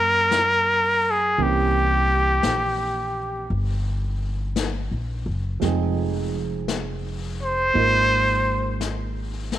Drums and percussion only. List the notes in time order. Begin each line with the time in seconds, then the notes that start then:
0.31 brush sweep, snare, hi-hat pedal
1.38 brush sweep
2.43 brush sweep, snare, hi-hat pedal
3.49 brush sweep
4.56 brush sweep, snare, hi-hat pedal
5.62 brush sweep, snare
6.68 brush sweep, snare, hi-hat pedal
7.74 brush sweep
8.81 brush sweep, snare, hi-hat pedal
9.52 snare